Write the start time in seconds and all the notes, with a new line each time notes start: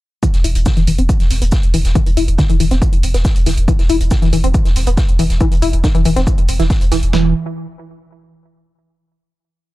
0.23 E3, kick, closed hi-hat, shaker
0.33 E1, snare, closed hi-hat
0.44 E1 E4, open hi-hat, shaker
0.55 E1, closed hi-hat
0.66 D#3, kick, snare, closed hi-hat, shaker
0.77 E1 E3, snare, closed hi-hat
0.87 E1 E3, open hi-hat, shaker
0.98 E1 C4, closed hi-hat
1.09 kick, closed hi-hat, shaker
1.20 E1, snare, closed hi-hat
1.30 E1, snare, open hi-hat, shaker
1.42 E1 B3, closed hi-hat
1.51 kick, snare, closed hi-hat, shaker
1.63 E1, closed hi-hat
1.74 E1 E3, open hi-hat, shaker
1.85 E1, snare, closed hi-hat
1.95 E3, kick, closed hi-hat, shaker
2.06 E1, closed hi-hat
2.17 E1 E4, open hi-hat, shaker
2.28 E1, closed hi-hat
2.38 D#3, kick, snare, closed hi-hat, shaker
2.50 E1 E3, closed hi-hat
2.60 E1 E3, open hi-hat, shaker
2.71 E1 C4, snare, closed hi-hat
2.82 kick, closed hi-hat, shaker
2.93 E1, closed hi-hat
3.03 E1, open hi-hat, shaker
3.14 E1 B3, snare, closed hi-hat
3.25 kick, snare, closed hi-hat, shaker
3.36 E1, closed hi-hat
3.46 E1 E3, snare, open hi-hat, shaker
3.57 E1, closed hi-hat
3.68 E3, kick, closed hi-hat, shaker
3.79 E1, snare, closed hi-hat
3.89 E1 E4, open hi-hat, shaker
4.00 E1, closed hi-hat
4.11 D#3, kick, snare, closed hi-hat, shaker
4.22 E1 E3, snare, closed hi-hat
4.33 E1 E3, open hi-hat, shaker
4.44 E1 C4, closed hi-hat
4.54 kick, closed hi-hat, shaker
4.65 E1, snare, closed hi-hat
4.76 E1, snare, open hi-hat, shaker
4.86 E1 B3, closed hi-hat
4.97 kick, snare, closed hi-hat, shaker
5.09 E1, closed hi-hat
5.19 E1 E3, open hi-hat, shaker
5.30 E1, snare, closed hi-hat
5.40 E3, kick, closed hi-hat, shaker
5.52 E1, closed hi-hat
5.62 E1 E4, open hi-hat, shaker
5.73 E1, closed hi-hat
5.84 D#3, kick, snare, closed hi-hat, shaker
5.95 E1 E3, closed hi-hat
6.05 E1 E3, open hi-hat, shaker
6.16 E1 C4, snare, closed hi-hat
6.27 kick, closed hi-hat, shaker
6.38 E1, closed hi-hat
6.49 E1, open hi-hat, shaker
6.60 E1 E3, snare, closed hi-hat
6.70 kick, snare, closed hi-hat, shaker
6.81 E1, closed hi-hat
6.92 E1 E3, snare, open hi-hat, shaker
7.03 E1, closed hi-hat
7.13 E1 E3, snare